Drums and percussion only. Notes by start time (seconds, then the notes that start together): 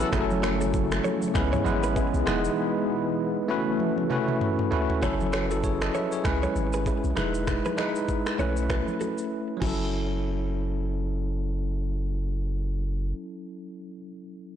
0.00 shaker
0.13 finger snap, kick, cross-stick, low conga, shaker
0.30 high conga, shaker
0.43 finger snap, cross-stick, high conga, shaker
0.61 shaker
0.74 kick, shaker
0.92 finger snap, cross-stick, shaker
1.05 high conga, shaker
1.22 high conga, shaker
1.35 finger snap, kick, cross-stick, low conga, shaker
1.53 mid tom, high conga, shaker
1.66 high conga, shaker
1.83 shaker
1.96 kick, shaker
2.14 shaker
2.27 finger snap, cross-stick, high conga, low conga, shaker
2.45 shaker
3.80 high tom
3.98 high tom
4.11 mid tom
4.28 mid tom
4.41 mid tom
4.59 mid tom
4.72 floor tom
4.90 floor tom
5.02 finger snap, kick, cross-stick, low conga, shaker
5.20 high conga, shaker
5.33 finger snap, cross-stick, high conga, shaker
5.51 shaker
5.64 kick, shaker
5.81 finger snap, cross-stick, shaker
5.94 high conga, shaker
6.12 shaker
6.25 finger snap, kick, cross-stick, low conga, shaker
6.43 high conga, shaker
6.56 high conga, shaker
6.73 shaker
6.86 kick, shaker
7.04 shaker
7.17 finger snap, cross-stick, high conga, low conga, shaker
7.34 shaker
7.47 finger snap, kick, cross-stick, low conga, shaker
7.65 high conga, shaker
7.78 finger snap, cross-stick, high conga, shaker
7.96 shaker
8.08 kick, shaker
8.26 finger snap, cross-stick, shaker
8.39 high conga, shaker
8.57 shaker
8.70 finger snap, kick, cross-stick, low conga, shaker
8.88 high conga, shaker
9.01 high conga, shaker
9.18 shaker
9.62 kick, crash, high conga